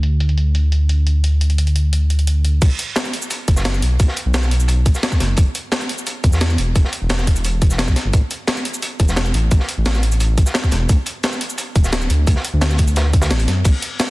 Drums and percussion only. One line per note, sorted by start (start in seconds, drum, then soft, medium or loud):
0.03 closed hi-hat medium
0.20 closed hi-hat medium
0.29 closed hi-hat soft
0.38 closed hi-hat medium
0.55 closed hi-hat medium
0.72 closed hi-hat medium
0.89 closed hi-hat medium
1.07 closed hi-hat medium
1.24 closed hi-hat medium
1.41 closed hi-hat medium
1.50 closed hi-hat soft
1.58 closed hi-hat medium
1.67 closed hi-hat soft
1.76 closed hi-hat medium
1.93 closed hi-hat medium
2.10 closed hi-hat medium
2.19 closed hi-hat soft
2.27 closed hi-hat medium
2.45 closed hi-hat medium
2.62 kick loud
2.62 closed hi-hat medium
2.62 crash loud
2.62 shaker medium
2.79 closed hi-hat medium
2.79 closed hi-hat loud
2.79 shaker soft
2.96 snare loud
2.96 closed hi-hat medium
2.96 shaker soft
3.05 closed hi-hat soft
3.05 shaker soft
3.13 closed hi-hat medium
3.13 closed hi-hat loud
3.22 shaker medium
3.30 closed hi-hat medium
3.30 shaker medium
3.48 kick loud
3.48 closed hi-hat medium
3.48 shaker soft
3.56 snare medium
3.56 shaker medium
3.65 snare loud
3.65 closed hi-hat medium
3.65 shaker medium
3.74 shaker soft
3.82 closed hi-hat medium
4.00 kick loud
4.00 closed hi-hat medium
4.00 shaker medium
4.08 snare soft
4.16 closed hi-hat medium
4.16 closed hi-hat loud
4.16 shaker soft
4.34 snare loud
4.34 closed hi-hat medium
4.34 shaker soft
4.43 snare medium
4.43 shaker soft
4.51 closed hi-hat loud
4.51 closed hi-hat medium
4.60 closed hi-hat soft
4.60 shaker medium
4.68 closed hi-hat medium
4.68 shaker soft
4.86 kick loud
4.86 closed hi-hat medium
4.86 closed hi-hat loud
4.86 shaker soft
4.95 snare soft
4.95 shaker medium
5.03 snare loud
5.03 closed hi-hat medium
5.03 shaker soft
5.12 kick medium
5.12 snare soft
5.12 shaker soft
5.20 snare soft
5.20 closed hi-hat loud
5.20 closed hi-hat medium
5.37 kick loud
5.37 closed hi-hat medium
5.37 shaker soft
5.55 closed hi-hat medium
5.55 closed hi-hat loud
5.55 shaker soft
5.72 snare loud
5.72 closed hi-hat medium
5.72 shaker soft
5.81 closed hi-hat soft
5.81 shaker soft
5.89 closed hi-hat medium
5.98 shaker medium
6.07 closed hi-hat medium
6.07 shaker soft
6.24 kick loud
6.24 closed hi-hat loud
6.24 closed hi-hat medium
6.24 shaker soft
6.33 snare soft
6.33 shaker medium
6.41 snare loud
6.41 closed hi-hat medium
6.41 shaker soft
6.50 shaker soft
6.58 closed hi-hat medium
6.75 kick loud
6.75 closed hi-hat medium
6.75 shaker soft
6.85 snare soft
6.93 closed hi-hat medium
6.93 shaker soft
7.09 snare loud
7.09 closed hi-hat medium
7.09 shaker soft
7.19 snare medium
7.19 shaker soft
7.27 kick medium
7.27 closed hi-hat medium
7.36 closed hi-hat soft
7.36 shaker medium
7.45 closed hi-hat medium
7.45 shaker soft
7.62 kick loud
7.62 closed hi-hat medium
7.62 shaker soft
7.70 snare soft
7.70 shaker medium
7.78 snare loud
7.78 closed hi-hat medium
7.78 shaker soft
7.88 kick medium
7.88 snare soft
7.88 shaker soft
7.96 snare soft
7.96 closed hi-hat medium
8.13 kick loud
8.13 closed hi-hat medium
8.13 closed hi-hat loud
8.13 shaker soft
8.31 closed hi-hat medium
8.31 shaker soft
8.47 snare loud
8.47 closed hi-hat medium
8.47 shaker soft
8.57 closed hi-hat soft
8.57 shaker soft
8.65 closed hi-hat medium
8.74 shaker medium
8.82 closed hi-hat medium
8.82 shaker soft
9.00 kick loud
9.00 closed hi-hat medium
9.00 shaker soft
9.08 snare medium
9.08 shaker medium
9.16 snare loud
9.16 closed hi-hat medium
9.16 shaker soft
9.26 shaker soft
9.34 closed hi-hat medium
9.51 kick loud
9.51 closed hi-hat medium
9.51 shaker medium
9.60 snare soft
9.69 closed hi-hat medium
9.69 shaker soft
9.86 snare loud
9.86 closed hi-hat medium
9.86 shaker soft
9.95 snare medium
9.95 shaker soft
10.03 closed hi-hat medium
10.12 closed hi-hat soft
10.12 shaker medium
10.20 closed hi-hat medium
10.20 shaker soft
10.37 kick loud
10.37 closed hi-hat medium
10.37 shaker soft
10.46 snare soft
10.46 shaker medium
10.54 snare loud
10.54 closed hi-hat medium
10.54 shaker soft
10.63 kick medium
10.63 snare soft
10.63 shaker soft
10.71 snare soft
10.71 closed hi-hat medium
10.89 kick loud
10.89 closed hi-hat medium
10.89 shaker medium
11.06 closed hi-hat medium
11.06 shaker soft
11.23 snare loud
11.23 closed hi-hat medium
11.23 shaker soft
11.32 closed hi-hat soft
11.32 shaker soft
11.41 closed hi-hat medium
11.50 shaker medium
11.58 closed hi-hat medium
11.58 shaker medium
11.76 kick loud
11.76 closed hi-hat medium
11.76 shaker soft
11.84 snare soft
11.84 shaker medium
11.92 snare loud
11.92 closed hi-hat medium
11.92 shaker soft
12.02 shaker soft
12.10 closed hi-hat medium
12.27 kick loud
12.27 closed hi-hat medium
12.27 shaker medium
12.36 snare soft
12.45 closed hi-hat loud
12.45 closed hi-hat medium
12.45 shaker soft
12.61 snare loud
12.61 closed hi-hat medium
12.61 shaker medium
12.70 snare medium
12.70 shaker soft
12.78 kick medium
12.78 closed hi-hat medium
12.87 closed hi-hat soft
12.87 shaker medium
12.96 snare loud
12.96 closed hi-hat medium
12.96 shaker soft
13.13 kick loud
13.13 closed hi-hat medium
13.13 shaker soft
13.22 snare loud
13.22 closed hi-hat medium
13.22 shaker medium
13.31 snare loud
13.31 closed hi-hat medium
13.31 shaker medium
13.39 closed hi-hat medium
13.39 shaker soft
13.48 snare soft
13.48 closed hi-hat medium
13.64 kick loud
13.64 closed hi-hat medium
13.64 crash medium
13.64 shaker medium
13.82 closed hi-hat medium
13.82 closed hi-hat loud
13.82 shaker soft
14.00 snare loud
14.00 closed hi-hat medium
14.00 shaker medium